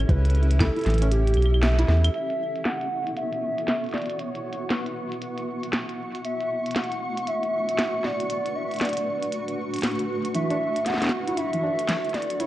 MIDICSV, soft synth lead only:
0, 0, Header, 1, 2, 480
1, 0, Start_track
1, 0, Tempo, 512821
1, 84, Time_signature, 4, 2, 24, 8
1, 11668, End_track
2, 0, Start_track
2, 0, Title_t, "Soft synth lead"
2, 0, Program_c, 0, 80
2, 0, Note_on_c, 0, 73, 127
2, 85, Note_on_c, 0, 71, 118
2, 99, Note_off_c, 0, 73, 0
2, 565, Note_on_c, 0, 69, 98
2, 579, Note_off_c, 0, 71, 0
2, 1040, Note_off_c, 0, 69, 0
2, 1045, Note_on_c, 0, 67, 86
2, 1727, Note_off_c, 0, 67, 0
2, 2006, Note_on_c, 0, 76, 115
2, 2485, Note_on_c, 0, 78, 112
2, 2499, Note_off_c, 0, 76, 0
2, 2964, Note_on_c, 0, 76, 110
2, 2978, Note_off_c, 0, 78, 0
2, 3679, Note_off_c, 0, 76, 0
2, 3685, Note_on_c, 0, 74, 92
2, 3924, Note_on_c, 0, 73, 107
2, 3938, Note_off_c, 0, 74, 0
2, 4404, Note_on_c, 0, 71, 92
2, 4418, Note_off_c, 0, 73, 0
2, 4879, Note_off_c, 0, 71, 0
2, 4885, Note_on_c, 0, 71, 83
2, 5331, Note_off_c, 0, 71, 0
2, 5844, Note_on_c, 0, 76, 115
2, 6326, Note_on_c, 0, 78, 112
2, 6340, Note_off_c, 0, 76, 0
2, 6806, Note_on_c, 0, 76, 106
2, 6820, Note_off_c, 0, 78, 0
2, 7526, Note_on_c, 0, 74, 88
2, 7540, Note_off_c, 0, 76, 0
2, 7759, Note_off_c, 0, 74, 0
2, 7764, Note_on_c, 0, 74, 100
2, 8005, Note_on_c, 0, 76, 96
2, 8019, Note_off_c, 0, 74, 0
2, 8245, Note_on_c, 0, 74, 88
2, 8260, Note_off_c, 0, 76, 0
2, 9205, Note_off_c, 0, 74, 0
2, 9683, Note_on_c, 0, 76, 121
2, 10166, Note_on_c, 0, 78, 117
2, 10180, Note_off_c, 0, 76, 0
2, 10645, Note_on_c, 0, 76, 113
2, 10659, Note_off_c, 0, 78, 0
2, 11366, Note_on_c, 0, 74, 95
2, 11380, Note_off_c, 0, 76, 0
2, 11606, Note_on_c, 0, 73, 107
2, 11621, Note_off_c, 0, 74, 0
2, 11668, Note_off_c, 0, 73, 0
2, 11668, End_track
0, 0, End_of_file